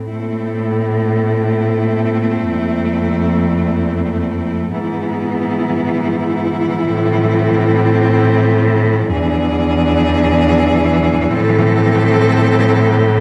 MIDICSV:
0, 0, Header, 1, 5, 480
1, 0, Start_track
1, 0, Key_signature, 0, "minor"
1, 0, Tempo, 500000
1, 12674, End_track
2, 0, Start_track
2, 0, Title_t, "Cello"
2, 0, Program_c, 0, 42
2, 91, Note_on_c, 0, 64, 62
2, 4484, Note_off_c, 0, 64, 0
2, 4533, Note_on_c, 0, 64, 74
2, 8717, Note_off_c, 0, 64, 0
2, 8755, Note_on_c, 0, 68, 83
2, 10843, Note_off_c, 0, 68, 0
2, 10885, Note_on_c, 0, 69, 90
2, 12674, Note_off_c, 0, 69, 0
2, 12674, End_track
3, 0, Start_track
3, 0, Title_t, "Cello"
3, 0, Program_c, 1, 42
3, 108, Note_on_c, 1, 60, 65
3, 4492, Note_off_c, 1, 60, 0
3, 4530, Note_on_c, 1, 59, 76
3, 6589, Note_off_c, 1, 59, 0
3, 6627, Note_on_c, 1, 60, 81
3, 8715, Note_off_c, 1, 60, 0
3, 8758, Note_on_c, 1, 62, 88
3, 10844, Note_off_c, 1, 62, 0
3, 10875, Note_on_c, 1, 60, 93
3, 12674, Note_off_c, 1, 60, 0
3, 12674, End_track
4, 0, Start_track
4, 0, Title_t, "Cello"
4, 0, Program_c, 2, 42
4, 107, Note_on_c, 2, 57, 62
4, 4492, Note_off_c, 2, 57, 0
4, 4531, Note_on_c, 2, 52, 69
4, 8715, Note_off_c, 2, 52, 0
4, 8747, Note_on_c, 2, 52, 85
4, 12674, Note_off_c, 2, 52, 0
4, 12674, End_track
5, 0, Start_track
5, 0, Title_t, "Cello"
5, 0, Program_c, 3, 42
5, 114, Note_on_c, 3, 45, 66
5, 2341, Note_on_c, 3, 41, 70
5, 2355, Note_off_c, 3, 45, 0
5, 4530, Note_off_c, 3, 41, 0
5, 4535, Note_on_c, 3, 44, 75
5, 6592, Note_off_c, 3, 44, 0
5, 6630, Note_on_c, 3, 45, 90
5, 8751, Note_on_c, 3, 40, 93
5, 8765, Note_off_c, 3, 45, 0
5, 10875, Note_off_c, 3, 40, 0
5, 10881, Note_on_c, 3, 45, 93
5, 12674, Note_off_c, 3, 45, 0
5, 12674, End_track
0, 0, End_of_file